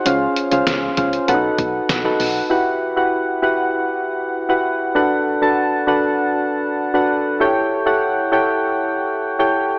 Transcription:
0.05 fm bass C#2, synth keys C#4 F4 G#4 C5 F5, closed hi-hat
0.36 closed hi-hat
0.51 fm bass C#2, synth keys C#4 F4 G#4 C5 F5, closed hi-hat
0.67 fm bass C#2, snare, closed hi-hat, tambourine
0.97 fm bass C#2, synth keys C#4 F4 G#4 C5 F5, kick, closed hi-hat
1.13 closed hi-hat
1.28 fm bass B1, synth keys C#4 F#4 A4 B4 F#5, closed hi-hat
1.34 synth keys D#4
1.58 fm bass B1, kick, closed hi-hat
1.89 fm bass B1, snare, closed hi-hat, tambourine
2.05 synth keys D#4 F#4 A4 B4 F#5
2.20 fm bass B1, open hi-hat
2.50 synth keys E4 F#4 G4 B4 F#5
2.96 synth keys E4 F#4 G4 B4 F#5
3.42 synth keys E4 F#4 G4 B4 F#5
4.49 synth keys E4 F#4 G4 B4 F#5
4.95 synth keys D4 F#4 A4 B4 F#5
5.42 synth keys D4 F#4 A4 B4 A5
5.87 synth keys D4 F#4 A4 B4 F#5
6.94 synth keys D4 F#4 A4 B4 F#5
7.40 synth keys E4 G4 A4 C#5 G5
7.86 synth keys E4 G4 A4 C#5 F#5
8.32 synth keys E4 G4 A4 C#5 G5
9.39 synth keys E4 G4 A4 C#5 G5

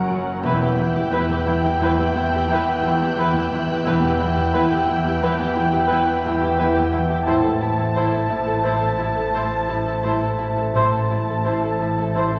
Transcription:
Already playing: synth drone F#1, cello section F#2, harp F#3, viola section C#4, violin section A#4 F#5, glass harmonica A#4 C#5 F#5, grand piano F#6
0.10 harp F#2
0.43 double bass section E1, harp E2, synth drone E2, cello section E2, viola section E4, violin section B4 G5 E6 F#6 G6, glass harmonica B4 E5 G5
0.62 cello section E2, viola section E4, violin section G4
0.78 cello section E2, harp E3, viola section E4, violin section E4
0.94 cello section E2, viola section E4, violin section G4
1.11 harp E2, cello section E2, viola section E4, violin section B4
1.30 cello section E2, viola section E4, violin section G4
1.46 harp E2, cello section E2, viola section E4, violin section E4
1.62 cello section E2, viola section E4, violin section G4
1.79 cello section E2, harp E2, viola section E4, violin section B4
1.97 cello section E2, viola section E4, violin section G4
2.15 harp E2, cello section E2, viola section E4, violin section E4
2.31 cello section E2, viola section E4, violin section G4
2.48 cello section E2, harp E2, viola section E4
2.52 violin section B4
2.82 cello section E2, harp E2, viola section E4
2.87 violin section E4
2.99 cello section E2, viola section E4, violin section G4
3.16 cello section E2, harp E3, viola section E4, violin section B4
3.32 cello section E2, viola section E4
3.37 violin section G4
3.50 cello section E2, harp E2, viola section E4, violin section E4
3.66 cello section E2, viola section E4
3.71 violin section G4
3.83 double bass section E1, cello section E2, synth drone E2, harp E2, viola section E4, violin section B4 G5, glass harmonica B4 E5 G5
4.01 cello section E2, viola section E4, violin section G4
4.18 cello section E2, harp E3, viola section E4, violin section E4
4.34 cello section E2, viola section E4, violin section G4
4.53 cello section E2, harp E2, viola section E4, violin section B4
4.71 cello section E2, viola section E4, violin section G4
4.87 cello section E2, harp E2, violin section E4, viola section E4
5.04 cello section E2, viola section E4, violin section G4
5.21 cello section E2, harp E2, viola section E4, violin section B4
5.38 cello section E2, viola section E4, violin section G4
5.55 cello section E2, harp E2, violin section E4, viola section E4
5.71 cello section E2, viola section E4, violin section G4
5.87 violin section B4, grand piano G5 G6
5.91 cello section E2, harp E2, viola section E4
6.22 cello section E2, violin section E4, viola section E4
6.26 harp E2
6.40 cello section E2, viola section E4, violin section G4
6.58 cello section E2, harp E3, viola section E4, violin section B4
6.75 cello section E2, viola section E4, violin section G4
6.91 harp E2, cello section E2, viola section E4, violin section E4
7.08 viola section E4, violin section G4
7.13 cello section E2
7.25 double bass section A1, synth drone A1, harp A2, cello section A2, viola section E4, violin section C5 A5, glass harmonica C5 E5 A5
7.42 cello section A2, viola section E4, violin section A4
7.60 cello section A2, harp A3, violin section E4, viola section E4
7.77 viola section E4, violin section A4
7.82 cello section A2
7.94 harp A2, cello section A2, viola section E4, violin section C5
8.11 viola section E4, violin section A4
8.16 cello section A2
8.29 harp A2, cello section A2, violin section E4, viola section E4
8.45 viola section E4, violin section A4
8.50 cello section A2
8.63 harp A2, cello section A2, viola section E4, violin section C5
8.80 cello section A2, viola section E4, violin section A4
8.98 harp A2, cello section A2, violin section E4, viola section E4
9.15 cello section A2, viola section E4, violin section A4
9.33 harp A2, cello section A2, viola section E4, violin section C5
9.69 cello section A2, harp A2, viola section E4, violin section E4
9.85 cello section A2, viola section E4, violin section A4
10.03 cello section A2, harp A3, viola section E4, violin section C5
10.22 cello section A2, viola section E4, violin section A4
10.38 cello section A2, harp A2, viola section E4, violin section E4
10.56 cello section A2, viola section E4, violin section A4
10.72 synth drone A1, double bass section A1, cello section A2, harp A2, viola section E4, glass harmonica C5 E5 A5, violin section C5 A5
10.92 cello section A2, viola section E4, violin section A4
11.09 cello section A2, harp A3, violin section E4, viola section E4
11.27 cello section A2, viola section E4, violin section A4
11.44 cello section A2, harp A2, viola section E4, violin section C5
11.62 cello section A2, viola section E4, violin section A4
11.79 harp A2, cello section A2, viola section E4, violin section E4
11.97 cello section A2, viola section E4, violin section A4
12.14 cello section A2, harp A2, viola section E4, violin section C5
12.30 cello section A2, viola section E4, violin section A4

